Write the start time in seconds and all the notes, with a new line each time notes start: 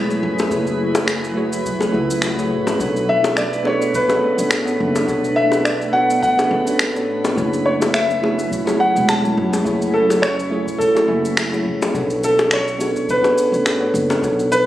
Already playing: E1 F#3 A3 E4 G#4 B4 B5
0.07 A3 E4 F#4 G#4 C#5, cabasa
0.23 F#2
0.39 high bongo, cabasa
0.49 F#1 A3 E4 F#4 G#4 C#5, kick, cabasa
0.67 cabasa
0.93 A3 E4 F#4 G#4 C#5, high bongo, cabasa
1.08 finger snap, cabasa
1.24 cabasa
1.35 A3 E4 F#4 G#4 C#5
1.53 cabasa
1.65 kick, cabasa
1.79 A3 E4 F#4 G#4 C#5, high bongo, cabasa
1.92 C#2 A3 E4 F#4 G#4 E5
2.10 cabasa
2.22 finger snap, high bongo, cabasa
2.36 A3 E4 F#4 G#4 C#5, cabasa
2.51 A1
2.67 high bongo, cabasa
2.78 B1 A3 B3 D4 F#4 A4 C#5, kick, cabasa
2.96 cabasa
3.09 E5
3.22 B3 D4 F#4 A4 C#5, high bongo, cabasa
3.37 D5, finger snap, cabasa
3.53 cabasa
3.63 B3 D4 F#4 A4 C#5, high bongo
3.67 C#5
3.82 cabasa
3.94 B4, kick, cabasa
4.07 B3 D4 F#4 A4 C#5, high bongo, cabasa
4.36 A1 B3 D4 F#4 A4 C#5, cabasa
4.51 finger snap, high bongo, cabasa
4.65 B3 D4 F#4 A4 C#5, cabasa
4.80 F#1
4.96 high bongo, cabasa
5.07 B3 D4 F#4 A4 C#5, kick, cabasa
5.24 cabasa
5.36 E5
5.51 B3 D4 F#4 A4 C#5, high bongo, cabasa
5.65 D5, finger snap, cabasa
5.82 cabasa
5.93 B3 D4 F#4 A4 C#5 F#5
6.10 cabasa
6.22 F#5, kick, cabasa
6.37 B3 D4 F#4 A4 C#5, high bongo, cabasa
6.51 A1
6.65 B3 D4 F#4 A4 C#5, cabasa
6.79 finger snap, high bongo, cabasa
6.94 B3 D4 F#4 A4 C#5, cabasa
7.25 high bongo, cabasa
7.35 F#1 F#3 A3 C#4 E4 F#4 G#4 C#5, kick, cabasa
7.53 cabasa
7.66 C#5
7.80 A3 E4 F#4 G#4 C#5, high bongo, cabasa
7.94 E5, finger snap, cabasa
8.10 cabasa
8.21 A3 E4 F#4 G#4 C#5, high bongo
8.39 cabasa
8.51 kick, cabasa
8.65 A3 E4 F#4 G#4 C#5, high bongo, cabasa
8.80 F#5
8.93 E1 A3 E4 F#4 G#4 C#5, cabasa
9.09 A5, finger snap, high bongo, cabasa
9.22 G#3 A3 E4 F#4 C#5, cabasa
9.37 F#2
9.53 high bongo, cabasa
9.65 F#1 A3 E4 F#4 G#4 C#5, kick, cabasa
9.82 cabasa
9.94 A4
10.08 A3 E4 F#4 G#4 C#5, high bongo, cabasa
10.22 C#5, finger snap, cabasa
10.39 cabasa
10.50 A3 E4 F#4 G#4 C#5
10.67 kick, cabasa
10.78 A4, kick, cabasa
10.95 A3 E4 F#4 G#4 C#5, high bongo, cabasa
11.07 F#1 A3 E4 F#4 E5 G#5
11.25 cabasa
11.37 finger snap, high bongo, cabasa
11.51 A3 E4 F#4 G#4 C#5, cabasa
11.65 F#2, kick
11.82 high bongo, cabasa
11.92 B1 B3 D4 F#4 A4 C#5, kick, cabasa
12.10 cabasa
12.23 A4, cabasa
12.37 B3 D4 F#4 A4 C#5, high bongo, cabasa
12.51 C#5, finger snap, cabasa
12.68 cabasa
12.78 B3 D4 F#4 A4 C#5, high bongo, cabasa
12.95 kick, cabasa
13.08 B4, kick, cabasa
13.22 B3 D4 F#4 A4 C#5, high bongo, cabasa
13.38 cabasa
13.51 A1 B3 D4 F#4 A4 C#5, cabasa
13.66 finger snap, high bongo, cabasa
13.80 B3 D4 F#4 A4 C#5
13.94 F#1, cabasa
14.10 high bongo, cabasa
14.22 B1 B3 D4 F#4 A4 C#5, kick, cabasa
14.39 cabasa
14.52 B4, cabasa